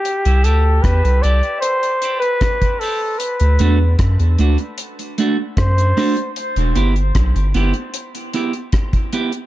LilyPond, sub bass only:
\new Staff \with { instrumentName = "Sub bass" } { \clef bass \time 4/4 \key e \minor \tempo 4 = 76 r16 c,16 d,8 e,16 c,16 c,16 r2 r16 | r16 d,16 e,8 fis,16 e,16 d,16 r4 r16 fis,8 r8 | r16 e,,16 g,,8 b,,16 g,,16 g,,16 r2 r16 | }